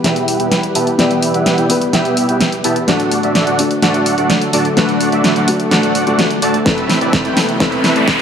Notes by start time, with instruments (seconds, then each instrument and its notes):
Already playing: analog synth pad E3 G3 B3 G4 B4, felt piano B3 E4 G4 B4
0.04 analog synth bass E2, supersaw synth B3 E4 G4 E5 G5, snare, closed hi-hat
0.16 closed hi-hat
0.28 open hi-hat
0.40 analog synth bass E2, supersaw synth B3 E4 G4 E5 G5, closed hi-hat
0.52 snare, closed hi-hat
0.63 closed hi-hat
0.75 analog synth bass E2, supersaw synth B3 E4 G4 E5 A5, open hi-hat
0.87 closed hi-hat
0.98 analog synth bass E2, felt piano B3 E4 G4 D5, supersaw synth B3 E4 G4 E5 G5, snare, closed hi-hat
1.11 closed hi-hat
1.22 open hi-hat
1.34 analog synth bass E2, supersaw synth B3 E4 G4 E5 F#5, closed hi-hat
1.46 snare, closed hi-hat
1.58 analog synth bass E2, supersaw synth B3 E4 G4 E5 G5, closed hi-hat
1.69 felt piano B3 E4 G4 B4, open hi-hat
1.82 closed hi-hat
1.93 analog synth bass E2, supersaw synth B3 E4 G4 E5 G5, snare, closed hi-hat
2.05 closed hi-hat
2.17 open hi-hat
2.29 analog synth bass E2, supersaw synth B3 E4 G4 E5 G5, closed hi-hat
2.41 snare, closed hi-hat
2.52 closed hi-hat
2.64 analog synth bass E2, supersaw synth B3 E4 G4 E5 A5, open hi-hat
2.76 closed hi-hat
2.87 analog synth bass D2, analog synth pad D3 F#3 A3 F#4 A4, felt piano A3 D4 F#4 A4, supersaw synth A3 D4 F#4 D5 F#5, snare, closed hi-hat
3.00 closed hi-hat
3.12 open hi-hat
3.23 analog synth bass D2, supersaw synth A3 D4 F#4 D5 E5, closed hi-hat
3.35 snare, closed hi-hat
3.47 analog synth bass D2, supersaw synth A3 D4 F#4 D5 F#5, closed hi-hat
3.58 felt piano A3 D4 F#4 A4, open hi-hat
3.71 closed hi-hat
3.82 analog synth bass D2, supersaw synth A3 D4 F#4 D5 F#5, snare, closed hi-hat
3.94 closed hi-hat
4.06 open hi-hat
4.18 analog synth bass D2, supersaw synth A3 D4 F#4 D5 F#5, closed hi-hat
4.30 snare, closed hi-hat
4.41 closed hi-hat
4.53 analog synth bass D2, supersaw synth A3 D4 F#4 D5 A5, open hi-hat
4.65 closed hi-hat
4.76 analog synth bass D2, felt piano A3 D4 F#4 B4, supersaw synth A3 D4 F#4 D5 F#5, snare, closed hi-hat
4.89 closed hi-hat
5.01 open hi-hat
5.12 analog synth bass D2, supersaw synth A3 D4 F#4 D5 E5, closed hi-hat
5.24 snare, closed hi-hat
5.36 analog synth bass D2, supersaw synth A3 D4 F#4 D5 F#5, closed hi-hat
5.47 felt piano A3 D4 F#4 A4, open hi-hat
5.60 closed hi-hat
5.71 analog synth bass D2, supersaw synth A3 D4 F#4 D5 F#5, snare, closed hi-hat
5.83 closed hi-hat
5.95 open hi-hat
6.06 analog synth bass D2, felt piano A3 D4 F#4 A4, supersaw synth A3 D4 F#4 D5 F#5, closed hi-hat
6.18 felt piano A3 D4 F#4 A4, snare, closed hi-hat
6.30 closed hi-hat
6.42 analog synth bass D2, supersaw synth A3 D4 F#4 D5 A5, open hi-hat
6.54 closed hi-hat
6.65 analog synth bass A1, analog synth pad C3 E3 E4 B4, supersaw synth A3 C4 E4 B4 E5, felt piano C4 E4 A4 B4, kick, snare, closed hi-hat, riser
6.78 closed hi-hat
6.90 snare, open hi-hat
7.01 analog synth bass A1, supersaw synth A3 C4 E4 B4 D5, closed hi-hat
7.13 kick, snare, closed hi-hat
7.25 analog synth bass A1, supersaw synth A3 C4 E4 B4 G5, closed hi-hat
7.36 felt piano B3 C4 E4 A4, snare, open hi-hat
7.49 closed hi-hat
7.59 analog synth bass A1, supersaw synth A3 C4 E4 B4 E5, felt piano C4 E4 A4 B4, kick, snare, closed hi-hat
7.72 closed hi-hat
7.84 snare, open hi-hat
7.96 analog synth bass A1, supersaw synth A3 C4 E4 B4 D5, closed hi-hat
8.08 kick, snare, closed hi-hat